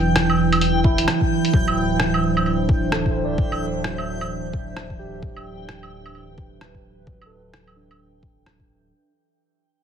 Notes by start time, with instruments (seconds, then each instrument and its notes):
Already playing: sub bass E1, ambient pad E3 E4 D5 G5, synth texture G5
0.16 cross-stick, closed hi-hat
0.30 claves
0.53 closed hi-hat, claves
0.61 closed hi-hat
0.84 sub bass E1, tine electric piano E4, kick
0.98 closed hi-hat
1.08 cross-stick, closed hi-hat
1.21 kick
1.45 closed hi-hat
1.53 sub bass D1, tine electric piano F#3, kick
1.68 claves
1.88 ambient pad D4 C5
2.00 ambient pad E5, cross-stick
2.14 claves
2.37 claves
2.46 claves
2.69 kick
2.92 tine electric piano A4, cross-stick
3.06 kick
3.11 tine electric piano C5
3.25 tine electric piano D5
3.38 sub bass D1, kick
3.52 claves
3.84 tine electric piano F#3, cross-stick
3.98 claves
4.21 claves
4.53 kick
4.77 sub bass D1, cross-stick
4.90 kick
4.99 tine electric piano G4
5.23 sub bass D1, kick
5.37 claves
5.69 ambient pad B4, cross-stick
5.83 claves
6.06 claves
6.15 claves
6.38 kick
6.61 cross-stick
6.75 kick
7.07 sub bass D1, tine electric piano F#3, kick
7.22 claves
7.26 tine electric piano A4
7.54 cross-stick
7.67 claves
7.76 tine electric piano D4
7.91 claves
8.23 kick
8.46 sub bass D1, cross-stick
8.60 kick
8.69 sub bass D1